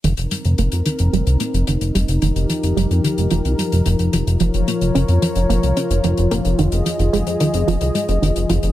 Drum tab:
HH |xxxxxxxxxxxxxxxx|xxxxxxxxxxxxxxxx|xxxxxxxxxxxxxxxx|xxxxxxxxxxxxxxxx|